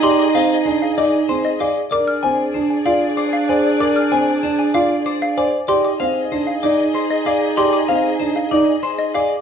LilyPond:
<<
  \new Staff \with { instrumentName = "Xylophone" } { \time 6/4 \key f \dorian \tempo 4 = 191 c'''8 d'''8 f''8 r4 f''8 ees''8 r8 c'''8 ees''8 f''8 r8 | d'''8 f'''8 aes''8 r4 aes''8 f''8 r8 d'''8 f''8 aes''8 r8 | d'''8 f'''8 aes''8 r4 aes''8 f''8 r8 d'''8 f''8 aes''8 r8 | c'''8 d'''8 f''8 r4 f''8 r4 c'''8 ees''8 f''8 r8 |
c'''8 d'''8 f''8 r4 f''8 r4 c'''8 ees''8 f''8 r8 | }
  \new Staff \with { instrumentName = "Clean electric guitar" } { \time 6/4 \key f \dorian d''8 r8 f''8 r8 c''8 r8 d''8 r8 c''8 r8 d''8 r8 | d''8 r8 aes''8 r8 c''8 r8 d''8 r8 c''8 r8 d''8 r8 | d''8 r8 aes''8 r8 c''8 r8 d''8 r8 c''8 r8 d''8 r8 | d''8 r8 f''8 r8 c''8 r8 d''8 r8 c''8 r8 d''8 r8 |
d''8 r8 f''8 r8 c''8 r8 d''8 r8 c''8 r8 d''8 r8 | }
  \new Staff \with { instrumentName = "String section" } { \time 6/4 \key f \dorian <aes' ees''>1~ <aes' ees''>4. r8 | <aes' d''>1.~ | <aes' d''>1~ <aes' d''>4. r8 | <aes' ees''>1.~ |
<aes' ees''>1~ <aes' ees''>4. r8 | }
  \new Staff \with { instrumentName = "Clarinet" } { \time 6/4 \key f \dorian ees'1~ ees'4. r8 | d'1.~ | d'1~ d'4. r8 | ees'1.~ |
ees'1~ ees'4. r8 | }
  \new Staff \with { instrumentName = "Grand piano" } { \time 6/4 \key f \dorian g'8 r8 c'8 r8 d'8 r8 ees'8 r8 c'8 r8 aes'8 r8 | bes'8 r8 c'8 r8 d'8 r8 f'8 r4. c''8 r8 | bes'8 r8 c'8 r8 d'8 r8 f'8 r4. c''8 r8 | g'8 r8 c'8 r8 d'8 r8 ees'8 r4. aes'8 r8 |
g'8 r8 c'8 r8 d'8 r8 ees'8 r4. aes'8 r8 | }
>>